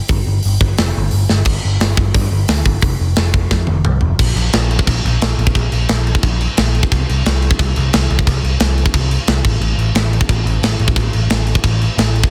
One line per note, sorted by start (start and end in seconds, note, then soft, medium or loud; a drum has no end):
0.08 0.20 G1 medium
0.08 kick loud
0.08 open hi-hat medium
0.27 0.38 G1 medium
0.43 0.56 G1 medium
0.43 open hi-hat medium
0.61 0.71 G1 medium
0.61 kick medium
0.78 0.90 F1 loud
0.78 snare loud
0.78 open hi-hat medium
0.97 1.07 G1 medium
1.11 1.23 G1 medium
1.11 open hi-hat medium
1.29 1.40 G1 medium
1.29 snare medium
1.45 1.57 G1 medium
1.45 kick loud
1.45 crash loud
1.65 1.76 G1 medium
1.80 1.92 G1 medium
1.80 snare loud
1.80 open hi-hat medium
1.97 2.09 G1 medium
1.97 kick medium
2.14 2.26 G2 loud
2.14 kick loud
2.14 open hi-hat medium
2.32 2.43 G1 medium
2.48 2.60 D2 medium
2.48 snare loud
2.48 open hi-hat medium
2.65 2.77 G1 loud
2.65 kick medium
2.81 2.94 F1 medium
2.81 kick loud
2.81 open hi-hat medium
3.01 3.12 F1 medium
3.16 3.29 F1 medium
3.16 snare loud
3.16 open hi-hat medium
3.34 3.45 F1 medium
3.34 kick loud
3.51 3.62 F2 loud
3.51 kick loud
3.51 snare medium
3.67 3.80 F1 medium
3.67 high tom medium
3.85 3.97 C2 medium
3.85 mid tom medium
4.01 4.13 F1 medium
4.01 floor tom medium
4.19 4.30 A#1 medium
4.19 kick loud
4.19 crash loud
4.19 crash medium
4.35 4.47 A#1 medium
4.35 crash medium
4.53 4.76 A#1 loud
4.53 snare loud
4.53 crash medium
4.71 crash medium
4.79 kick medium
4.87 4.98 A#1 loud
4.87 kick loud
4.87 crash loud
5.05 5.16 A#1 loud
5.05 crash medium
5.21 5.32 A#1 medium
5.21 snare loud
5.21 crash loud
5.38 5.49 A#1 medium
5.38 crash medium
5.47 kick loud
5.55 5.66 A#1 loud
5.55 kick medium
5.55 crash medium
5.72 5.83 A#1 medium
5.72 crash medium
5.89 6.11 A#1 loud
5.89 snare loud
5.89 crash medium
6.07 crash medium
6.15 kick medium
6.23 6.45 A#1 medium
6.23 kick loud
6.23 crash medium
6.41 crash medium
6.57 6.80 A#1 loud
6.57 snare loud
6.57 crash loud
6.75 crash medium
6.83 kick loud
6.92 7.03 C2 loud
6.92 kick loud
6.92 crash medium
7.09 7.20 C2 medium
7.09 crash medium
7.26 7.47 C2 medium
7.26 snare loud
7.26 crash loud
7.42 crash medium
7.51 kick loud
7.59 7.70 C2 loud
7.59 kick medium
7.59 crash medium
7.76 7.87 C2 loud
7.76 crash medium
7.93 8.05 C2 medium
7.93 snare loud
7.93 crash loud
8.10 8.21 C2 medium
8.10 crash medium
8.19 kick loud
8.27 8.38 C2 loud
8.27 kick loud
8.27 crash medium
8.43 8.54 C2 medium
8.43 crash medium
8.60 8.82 C2 medium
8.60 snare loud
8.60 crash loud
8.78 crash medium
8.86 kick medium
8.94 9.16 C2 loud
8.94 kick loud
8.94 crash medium
9.11 crash medium
9.27 9.39 C2 medium
9.27 snare loud
9.27 crash medium
9.45 9.56 A1 medium
9.45 kick loud
9.45 crash loud
9.61 9.72 A1 loud
9.61 crash medium
9.78 9.89 A1 medium
9.78 crash medium
9.95 10.17 A1 medium
9.95 snare loud
9.95 crash medium
10.13 crash medium
10.21 kick medium
10.29 10.40 A1 medium
10.29 kick loud
10.29 crash medium
10.45 10.57 A1 medium
10.45 crash medium
10.62 10.74 A1 medium
10.62 snare loud
10.62 crash medium
10.79 10.91 A1 loud
10.79 crash medium
10.88 kick loud
10.96 11.07 A1 medium
10.96 kick loud
10.96 crash medium
11.13 11.25 A1 medium
11.13 crash medium
11.30 11.52 A1 medium
11.30 snare loud
11.30 crash loud
11.47 crash medium
11.55 kick medium
11.64 11.86 A1 loud
11.64 kick medium
11.64 crash medium
11.81 crash medium
11.98 12.20 A1 loud
11.98 snare loud
11.98 crash loud
12.15 crash medium
12.24 kick loud